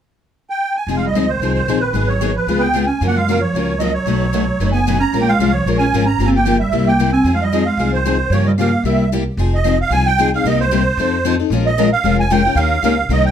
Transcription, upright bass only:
0.87 1.08 F1 medium
1.13 1.36 C#2 medium
1.40 1.63 C2 medium
1.66 1.89 A#1 medium
1.93 2.36 G#1 medium
2.47 2.90 C#2 medium
3.01 3.43 F#2 medium
3.54 3.96 C#2 medium
4.06 4.49 B1 medium
4.60 5.02 F#1 medium
5.13 5.34 A#1 medium
5.39 5.62 C2 medium
5.66 5.89 A#1 medium
5.92 6.15 G#1 medium
6.19 6.62 G1 medium
6.72 7.15 C2 medium
7.24 7.67 F2 medium
7.77 8.21 C2 medium
8.30 8.73 G2 medium
8.83 9.27 C2 medium
9.37 9.80 F1 medium
9.90 10.33 C2 medium
10.44 10.87 C2 medium
10.97 11.40 F2 medium
11.50 11.93 A#1 medium
12.04 12.46 F1 medium
12.55 12.77 D#2 medium
12.82 13.05 C#2 medium
13.09 13.31 C2 medium

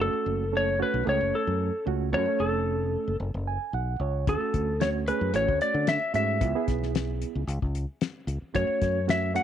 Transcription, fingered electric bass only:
0.00 0.11 F#1 medium
0.13 muted fingered electric bass stroke soft
0.26 0.82 F#1 medium
0.94 1.04 B1 medium
1.07 1.18 C#2 loud
1.21 1.31 F#1 medium
1.47 1.69 F#2 medium
1.87 2.14 C#2 medium
2.13 2.25 F#2 medium
2.40 2.95 F1 medium
3.08 3.18 F#1 medium
3.20 3.32 F#1 medium
3.34 3.56 F#1 medium
3.73 3.97 B1 medium
4.00 4.24 C#2 medium
4.27 4.39 D2 medium
4.54 5.09 D2 medium
5.21 5.31 F#2 medium
5.33 5.45 A1 medium
5.48 5.58 D2 medium
5.74 5.96 D3 medium
6.14 6.43 G#2 medium
6.41 6.53 C#2 medium
6.68 7.23 B1 medium
7.35 7.45 C#2 medium
7.47 7.59 C#2 medium
7.62 7.84 C#2 medium
8.27 8.39 C#2 medium
8.42 muted fingered electric bass stroke soft
8.54 8.66 F#2 medium
8.68 muted fingered electric bass stroke soft
8.82 9.37 F#2 medium

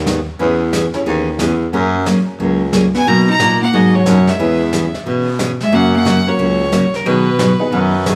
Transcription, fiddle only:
2.97 3.10 G#5 medium
3.08 3.29 A#5 loud
3.30 3.60 A#5 loud
3.63 3.76 F#5 medium
3.75 3.97 D#5 medium
3.95 4.30 C#5 medium
4.28 4.95 E5 medium
5.63 5.76 E5 medium
5.74 5.95 F#5 medium
5.96 6.30 F#5 loud
6.29 6.97 C#5 medium
6.95 7.09 A#4 medium
7.07 8.07 B4 medium

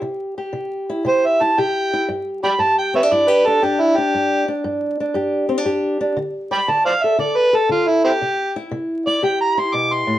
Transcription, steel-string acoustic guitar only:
0.00 0.51 C3 medium
0.00 0.37 G4 medium
0.38 1.06 G4 medium
0.53 1.02 C3 medium
0.89 1.40 E4 medium
1.05 1.53 C3 medium
1.05 1.58 G4 medium
1.41 1.92 E4 medium
1.58 2.06 C3 medium
1.58 2.43 G4 medium
1.93 2.07 E4 medium
2.09 2.56 G2 medium
2.43 3.11 G4 medium
2.59 3.07 G2 medium
2.94 3.03 C4 medium
3.03 3.45 D4 medium
3.11 3.59 G2 medium
3.11 3.28 E4 medium
3.28 4.13 G4 medium
3.47 3.63 D4 medium
3.62 4.10 G2 medium
3.62 3.98 D4 medium
3.98 4.48 D4 medium
4.14 4.61 G2 medium
4.48 5.00 D4 medium
4.64 5.12 G2 medium
5.00 5.48 D4 medium
5.14 5.62 G2 medium
5.14 5.64 G4 medium
5.49 5.58 C4 medium
5.58 5.99 D4 medium
5.65 6.13 G2 medium
5.65 6.15 G4 medium
6.01 6.15 D4 medium
6.17 6.64 D3 medium
6.51 8.18 D5 medium
6.68 7.15 D3 medium
7.04 7.18 A4 medium
7.19 7.66 D3 medium
7.19 7.52 A4 medium
7.53 8.18 A4 medium
7.69 8.17 D3 medium
8.21 8.68 C3 medium
8.56 9.06 E4 medium
8.71 9.19 C3 medium
9.07 9.56 E4 medium
9.23 9.70 C3 medium
9.23 10.19 G4 medium
9.58 10.19 E4 medium
9.74 10.06 B2 medium
10.07 10.19 A2 medium

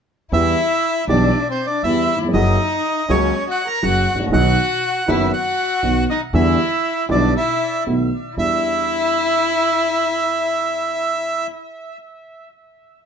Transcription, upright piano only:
0.32 0.53 E2 medium
0.32 0.54 E3 medium
0.32 0.54 G3 medium
0.32 0.54 B3 medium
0.32 0.54 G4 medium
1.09 1.30 B1 medium
1.09 1.30 B2 medium
1.09 1.29 E3 medium
1.09 1.30 G3 medium
1.09 1.30 B3 medium
1.09 1.30 G4 medium
1.85 2.06 E2 soft
1.85 2.05 E3 soft
1.85 2.05 G3 soft
1.85 2.06 B3 soft
1.85 2.06 G4 soft
2.16 2.22 D#2 soft
2.23 2.28 E2 medium
2.28 2.34 F2 medium
2.34 2.55 F#2 medium
2.34 2.55 C#3 medium
2.34 2.55 F#3 medium
2.34 2.55 A#3 medium
2.34 2.55 F#4 medium
3.09 3.30 C#2 medium
3.09 3.30 C#3 medium
3.09 3.30 F#3 medium
3.09 3.30 A#3 medium
3.09 3.30 F#4 medium
3.82 4.04 F#2 soft
3.82 4.04 C#3 soft
3.82 4.04 F#3 soft
3.82 4.04 A#3 soft
3.82 4.05 F#4 soft
4.16 4.22 G#1 soft
4.20 4.27 A1 medium
4.27 4.33 A#1 medium
4.32 4.54 B1 medium
4.32 4.54 B2 medium
4.32 4.54 D#3 medium
4.32 4.54 F#3 medium
4.32 4.54 B3 medium
4.32 4.54 F#4 medium
5.08 5.29 F#1 medium
5.08 5.29 F#2 medium
5.08 5.29 D#3 medium
5.08 5.29 F#3 medium
5.08 5.29 B3 medium
5.08 5.30 F#4 medium
5.83 6.04 B1 soft
5.83 6.04 B2 soft
5.83 6.04 D#3 soft
5.83 6.04 F#3 soft
5.83 6.04 B3 soft
5.83 6.04 F#4 soft
6.34 6.55 E2 medium
6.34 6.55 D3 medium
6.34 6.55 E3 medium
6.34 6.55 G3 medium
6.34 6.55 B3 medium
6.34 6.55 E4 medium
7.09 7.30 B1 medium
7.09 7.30 B2 medium
7.09 7.30 D3 medium
7.09 7.30 G3 medium
7.09 7.30 B3 medium
7.09 7.31 E4 medium
7.87 8.08 B1 soft
7.87 8.08 B2 soft
7.87 8.08 D#3 soft
7.87 8.08 A3 soft
7.87 8.08 B3 soft
7.87 8.08 F#4 soft
8.37 11.45 E2 soft
8.37 11.45 G3 soft
8.37 11.45 D4 soft
8.37 11.46 E4 medium

